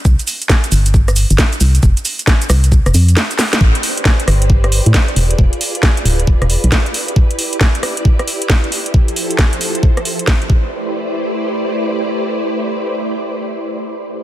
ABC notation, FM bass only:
X:1
M:4/4
L:1/16
Q:"Swing 16ths" 1/4=135
K:Am
V:1 name="FM bass" clef=bass
C,, z4 z G,,,4- G,,, G,,, z2 C,, z | F,,, z4 z C,,3 F,,, F,,2 z4 | A,,, z4 z G,,,4- G,,, A,, z2 E,,, z | E,,, z4 z D,,,3 E,,, z B,,, z4 |
z16 | z16 | z16 | z16 |]